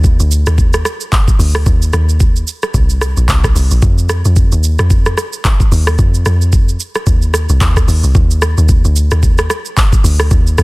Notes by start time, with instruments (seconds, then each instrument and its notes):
Already playing: log drum bass D#2
0.04 kick, shaker
0.20 log drum bass D2, shaker
0.31 shaker
0.47 log drum bass D#2, cross-stick, shaker
0.58 kick, shaker
0.73 cross-stick, shaker
0.85 cross-stick, shaker
1.01 shaker
1.12 kick, clap, shaker
1.28 kick, shaker
1.39 log drum bass D2, open hi-hat, shaker
1.55 cross-stick, shaker
1.66 log drum bass D#2, kick, shaker
1.82 shaker
1.93 log drum bass D#2, cross-stick, shaker
2.09 shaker
2.20 kick, shaker
2.36 shaker
2.48 shaker
2.63 cross-stick, shaker
2.74 log drum bass C2, kick, shaker
2.90 shaker
3.01 cross-stick, shaker
3.17 log drum bass A#1, shaker
3.29 log drum bass C2, kick, clap, shaker
3.44 kick, cross-stick, shaker
3.55 log drum bass C2, open hi-hat, shaker
3.71 log drum bass A#1, shaker
3.82 log drum bass F2, kick, shaker
3.98 shaker
4.09 cross-stick, shaker
4.25 log drum bass F2, shaker
4.36 kick, shaker
4.52 log drum bass D#2, shaker
4.64 shaker
4.79 log drum bass F2, cross-stick, shaker
4.90 kick, shaker
5.06 cross-stick, shaker
5.18 cross-stick, shaker
5.33 shaker
5.45 kick, clap, shaker
5.60 kick, shaker
5.72 log drum bass D#2, open hi-hat, shaker
5.87 cross-stick, shaker
5.99 log drum bass F2, kick, shaker
6.14 shaker
6.26 log drum bass F2, cross-stick, shaker
6.41 shaker
6.53 kick, shaker
6.69 shaker
6.80 shaker
6.95 cross-stick, shaker
7.07 log drum bass D#2, kick, shaker
7.22 shaker
7.34 cross-stick, shaker
7.49 log drum bass C2, shaker
7.61 log drum bass D#2, kick, clap, shaker
7.76 kick, cross-stick, shaker
7.88 log drum bass D#2, open hi-hat, shaker
8.04 log drum bass C2, shaker
8.15 log drum bass D#2, kick, shaker
8.31 shaker
8.42 cross-stick, shaker
8.58 log drum bass D#2, shaker
8.69 kick, shaker
8.85 log drum bass D2, shaker
8.96 shaker
9.11 log drum bass D#2, cross-stick, shaker
9.23 kick, shaker
9.38 cross-stick, shaker
9.50 cross-stick, shaker
9.65 shaker
9.77 kick, clap, shaker
9.93 kick, shaker
10.04 log drum bass D2, open hi-hat, shaker
10.20 cross-stick, shaker
10.31 log drum bass D#2, kick, shaker
10.47 shaker
10.58 log drum bass D#2, cross-stick, shaker